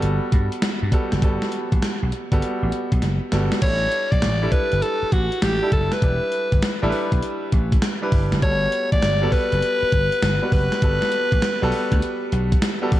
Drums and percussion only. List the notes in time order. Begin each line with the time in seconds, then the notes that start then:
0.02 closed hi-hat
0.32 kick, closed hi-hat
0.52 closed hi-hat
0.62 snare, closed hi-hat
0.92 kick, closed hi-hat
1.12 snare, closed hi-hat
1.22 kick, closed hi-hat
1.42 snare
1.52 closed hi-hat
1.72 kick, closed hi-hat
1.82 snare, closed hi-hat
2.12 closed hi-hat
2.32 kick, closed hi-hat
2.42 closed hi-hat
2.72 closed hi-hat
2.92 kick, closed hi-hat
3.02 snare, closed hi-hat
3.32 snare, closed hi-hat
3.52 snare, closed hi-hat
3.62 kick, closed hi-hat, crash
3.92 closed hi-hat
4.12 kick, closed hi-hat
4.22 snare, closed hi-hat
4.52 kick, closed hi-hat
4.72 closed hi-hat
4.82 closed hi-hat
5.12 kick, closed hi-hat
5.32 closed hi-hat
5.42 snare, closed hi-hat
5.72 kick, closed hi-hat
5.92 snare, closed hi-hat
6.02 kick, closed hi-hat
6.32 closed hi-hat
6.52 kick, closed hi-hat
6.62 snare, closed hi-hat
6.92 open hi-hat
7.12 kick, closed hi-hat
7.22 closed hi-hat
7.52 kick, closed hi-hat
7.72 kick, closed hi-hat
7.82 snare, closed hi-hat
8.12 kick, open hi-hat
8.32 snare, closed hi-hat
8.42 kick, closed hi-hat
8.72 closed hi-hat
8.92 kick, closed hi-hat
9.02 snare, closed hi-hat
9.32 kick, open hi-hat
9.52 closed hi-hat
9.62 closed hi-hat
9.92 kick, closed hi-hat
10.12 closed hi-hat
10.22 snare, closed hi-hat
10.52 kick, open hi-hat
10.72 snare, closed hi-hat
10.82 kick, closed hi-hat
11.02 snare
11.12 closed hi-hat
11.32 kick, closed hi-hat
11.42 snare, closed hi-hat
11.72 open hi-hat
11.92 kick, closed hi-hat
12.02 closed hi-hat
12.32 closed hi-hat
12.52 kick, closed hi-hat
12.62 snare, closed hi-hat
12.92 kick, open hi-hat